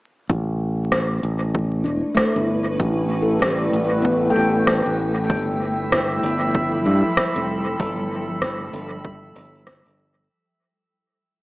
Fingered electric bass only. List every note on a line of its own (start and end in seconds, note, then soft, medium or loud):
0.30 1.21 A1 medium
1.23 1.83 A1 medium
1.86 2.02 E1 medium
2.36 2.77 G1 medium
2.80 3.71 A1 medium
3.73 4.33 A1 medium
4.36 4.82 A1 medium
4.86 5.27 A1 medium
5.30 6.21 G1 medium
6.23 6.83 G1 medium
6.86 7.02 G2 medium
7.36 7.77 F1 medium
7.80 8.71 G1 medium
8.73 9.33 G1 medium
9.36 9.82 G1 medium
9.86 10.27 G1 medium